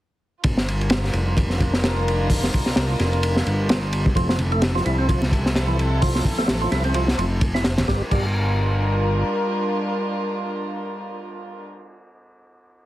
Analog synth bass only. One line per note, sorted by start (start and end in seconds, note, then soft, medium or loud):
0.44 1.11 G1 loud
1.14 2.50 F1 medium
2.67 2.75 C2 soft
2.77 2.96 C2 medium
3.00 3.43 F1 medium
3.46 4.13 G1 loud
4.15 4.82 F1 loud
4.86 6.22 C2 medium
6.39 6.47 A1 soft
6.48 6.68 A1 medium
6.72 7.15 C2 medium
7.18 7.85 F1 medium
7.88 8.02 G1 medium
8.11 9.24 G1 medium